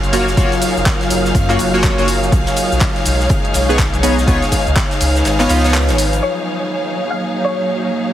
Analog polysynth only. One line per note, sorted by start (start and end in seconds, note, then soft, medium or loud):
0.13 0.25 A#3 medium
0.13 0.25 F4 medium
0.13 0.25 F#4 medium
0.13 0.25 C#5 medium
0.37 0.49 A#3 medium
0.37 0.49 F4 medium
0.37 0.49 F#4 medium
0.37 0.50 C#5 loud
1.49 1.57 A#3 medium
1.49 1.57 F4 medium
1.49 1.58 F#4 medium
1.49 1.58 C#5 loud
1.74 1.95 A#3 medium
1.74 1.95 F4 medium
1.74 1.95 F#4 medium
1.74 1.95 C#5 loud
1.98 2.06 A#3 medium
1.98 2.06 F4 medium
1.98 2.06 F#4 medium
1.98 2.06 C#5 loud
3.69 3.77 B3 medium
3.69 3.77 D#4 medium
3.69 3.77 G#4 medium
3.69 3.77 C#5 loud
4.03 4.15 B3 medium
4.03 4.15 D#4 medium
4.03 4.15 G#4 medium
4.03 4.15 C#5 medium
4.27 4.39 B3 medium
4.27 4.40 D#4 medium
4.27 4.40 F4 medium
4.27 4.40 C#5 loud
5.40 5.47 B3 medium
5.40 5.47 D#4 medium
5.40 5.48 F4 medium
5.40 5.48 C#5 loud
5.49 5.61 B3 medium
5.49 5.61 D#4 medium
5.49 5.62 F4 medium
5.49 5.62 F5 loud
5.64 5.72 B3 medium
5.64 5.72 D#4 medium
5.64 5.72 F4 medium
5.64 5.72 C#5 loud